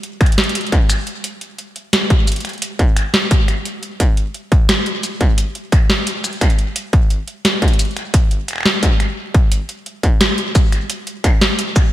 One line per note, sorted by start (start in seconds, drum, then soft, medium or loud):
0.03 closed hi-hat soft
0.21 finger snap medium
0.21 kick loud
0.21 closed hi-hat soft
0.26 closed hi-hat soft
0.32 closed hi-hat soft
0.38 snare loud
0.38 closed hi-hat soft
0.44 closed hi-hat medium
0.49 closed hi-hat medium
0.55 closed hi-hat medium
0.61 closed hi-hat soft
0.67 closed hi-hat soft
0.72 finger snap soft
0.72 kick loud
0.72 closed hi-hat soft
0.90 finger snap soft
0.90 closed hi-hat medium
0.90 shaker medium
1.07 closed hi-hat soft
1.24 closed hi-hat medium
1.41 closed hi-hat soft
1.58 closed hi-hat soft
1.76 closed hi-hat soft
1.93 snare loud
1.93 closed hi-hat medium
2.10 kick loud
2.10 closed hi-hat soft
2.27 closed hi-hat medium
2.27 shaker medium
2.32 closed hi-hat medium
2.36 closed hi-hat soft
2.40 closed hi-hat soft
2.45 finger snap soft
2.45 closed hi-hat soft
2.49 closed hi-hat soft
2.53 closed hi-hat soft
2.58 closed hi-hat soft
2.62 closed hi-hat medium
2.79 kick loud
2.79 closed hi-hat soft
2.97 finger snap medium
2.97 closed hi-hat medium
3.14 snare loud
3.14 closed hi-hat soft
3.31 kick loud
3.31 closed hi-hat medium
3.48 finger snap soft
3.48 closed hi-hat soft
3.65 closed hi-hat medium
3.83 closed hi-hat soft
4.00 kick loud
4.00 closed hi-hat medium
4.17 closed hi-hat soft
4.34 closed hi-hat soft
4.52 kick loud
4.52 closed hi-hat soft
4.69 snare loud
4.69 closed hi-hat medium
4.86 closed hi-hat soft
5.03 closed hi-hat medium
5.03 shaker medium
5.21 kick loud
5.21 closed hi-hat soft
5.38 closed hi-hat medium
5.55 closed hi-hat soft
5.72 finger snap medium
5.72 kick loud
5.72 closed hi-hat medium
5.90 snare loud
5.90 closed hi-hat soft
6.07 closed hi-hat medium
6.24 finger snap soft
6.24 closed hi-hat soft
6.24 shaker medium
6.33 closed hi-hat soft
6.41 finger snap medium
6.41 kick loud
6.41 closed hi-hat medium
6.50 closed hi-hat soft
6.59 closed hi-hat soft
6.76 closed hi-hat medium
6.93 kick loud
6.93 closed hi-hat soft
7.10 closed hi-hat soft
7.28 closed hi-hat soft
7.45 snare loud
7.45 closed hi-hat medium
7.62 kick loud
7.62 closed hi-hat soft
7.68 closed hi-hat soft
7.73 closed hi-hat soft
7.79 closed hi-hat medium
7.79 shaker medium
7.91 closed hi-hat soft
7.97 finger snap soft
7.97 closed hi-hat soft
8.14 kick loud
8.14 closed hi-hat medium
8.31 closed hi-hat soft
8.48 finger snap soft
8.48 closed hi-hat medium
8.51 finger snap soft
8.53 finger snap soft
8.56 finger snap soft
8.58 finger snap soft
8.61 finger snap soft
8.63 finger snap soft
8.63 snare loud
8.63 closed hi-hat soft
8.83 kick loud
8.83 closed hi-hat medium
9.00 finger snap soft
9.00 closed hi-hat soft
9.34 kick loud
9.34 closed hi-hat soft
9.52 closed hi-hat medium
9.69 closed hi-hat soft
9.86 closed hi-hat soft
10.03 kick loud
10.03 closed hi-hat soft
10.21 snare loud
10.21 closed hi-hat loud
10.38 closed hi-hat soft
10.55 kick loud
10.55 closed hi-hat medium
10.55 shaker medium
10.72 finger snap soft
10.72 closed hi-hat soft
10.90 closed hi-hat medium
11.07 closed hi-hat soft
11.24 finger snap medium
11.24 kick loud
11.24 closed hi-hat medium
11.41 snare loud
11.41 closed hi-hat soft
11.59 closed hi-hat loud
11.76 finger snap soft
11.76 kick loud
11.76 closed hi-hat soft
11.76 shaker medium